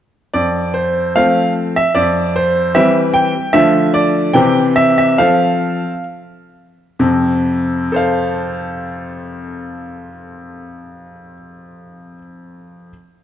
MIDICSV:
0, 0, Header, 1, 2, 480
1, 0, Start_track
1, 0, Key_signature, -1, "major"
1, 0, Tempo, 798935
1, 204, Time_signature, 2, 2, 24, 8
1, 2123, Tempo, 829876
1, 3083, Tempo, 882353
1, 3563, Tempo, 921659
1, 7293, End_track
2, 0, Start_track
2, 0, Title_t, "Grand piano"
2, 0, Program_c, 0, 0
2, 202, Note_on_c, 0, 74, 67
2, 204, Note_on_c, 0, 41, 46
2, 424, Note_off_c, 0, 74, 0
2, 444, Note_on_c, 0, 72, 55
2, 669, Note_off_c, 0, 72, 0
2, 681, Note_off_c, 0, 41, 0
2, 695, Note_on_c, 0, 77, 74
2, 696, Note_on_c, 0, 57, 39
2, 698, Note_on_c, 0, 53, 40
2, 700, Note_on_c, 0, 60, 44
2, 912, Note_off_c, 0, 77, 0
2, 1042, Note_off_c, 0, 57, 0
2, 1043, Note_off_c, 0, 53, 0
2, 1044, Note_off_c, 0, 60, 0
2, 1060, Note_on_c, 0, 76, 75
2, 1169, Note_on_c, 0, 74, 72
2, 1173, Note_on_c, 0, 41, 54
2, 1177, Note_off_c, 0, 76, 0
2, 1410, Note_off_c, 0, 74, 0
2, 1416, Note_on_c, 0, 72, 68
2, 1634, Note_off_c, 0, 41, 0
2, 1650, Note_on_c, 0, 52, 49
2, 1651, Note_off_c, 0, 72, 0
2, 1651, Note_on_c, 0, 76, 82
2, 1653, Note_on_c, 0, 60, 50
2, 1654, Note_on_c, 0, 55, 43
2, 1792, Note_off_c, 0, 76, 0
2, 1884, Note_on_c, 0, 79, 91
2, 1991, Note_off_c, 0, 52, 0
2, 1993, Note_off_c, 0, 55, 0
2, 1993, Note_off_c, 0, 60, 0
2, 2121, Note_on_c, 0, 76, 89
2, 2122, Note_on_c, 0, 50, 65
2, 2122, Note_on_c, 0, 53, 49
2, 2123, Note_off_c, 0, 79, 0
2, 2125, Note_on_c, 0, 57, 48
2, 2131, Note_on_c, 0, 65, 44
2, 2354, Note_off_c, 0, 76, 0
2, 2357, Note_on_c, 0, 74, 71
2, 2569, Note_off_c, 0, 53, 0
2, 2571, Note_off_c, 0, 57, 0
2, 2574, Note_off_c, 0, 65, 0
2, 2578, Note_off_c, 0, 50, 0
2, 2586, Note_on_c, 0, 79, 86
2, 2590, Note_on_c, 0, 48, 67
2, 2592, Note_on_c, 0, 52, 48
2, 2594, Note_off_c, 0, 74, 0
2, 2594, Note_on_c, 0, 60, 47
2, 2597, Note_on_c, 0, 67, 47
2, 2734, Note_off_c, 0, 79, 0
2, 2831, Note_on_c, 0, 76, 86
2, 2951, Note_off_c, 0, 76, 0
2, 2959, Note_on_c, 0, 76, 73
2, 3060, Note_off_c, 0, 52, 0
2, 3061, Note_off_c, 0, 60, 0
2, 3063, Note_off_c, 0, 67, 0
2, 3068, Note_off_c, 0, 48, 0
2, 3077, Note_on_c, 0, 77, 71
2, 3081, Note_on_c, 0, 53, 48
2, 3082, Note_on_c, 0, 69, 42
2, 3083, Note_on_c, 0, 60, 40
2, 3084, Note_off_c, 0, 76, 0
2, 3418, Note_off_c, 0, 53, 0
2, 3467, Note_off_c, 0, 60, 0
2, 3467, Note_off_c, 0, 69, 0
2, 3539, Note_off_c, 0, 77, 0
2, 4041, Note_on_c, 0, 41, 57
2, 4042, Note_on_c, 0, 48, 54
2, 4168, Control_c, 0, 64, 127
2, 4524, Note_on_c, 0, 69, 49
2, 4534, Note_on_c, 0, 72, 45
2, 4546, Note_on_c, 0, 77, 50
2, 6304, Note_off_c, 0, 41, 0
2, 6305, Note_off_c, 0, 48, 0
2, 6726, Note_off_c, 0, 69, 0
2, 6731, Note_off_c, 0, 72, 0
2, 6737, Note_off_c, 0, 77, 0
2, 7115, Control_c, 0, 64, 0
2, 7293, End_track
0, 0, End_of_file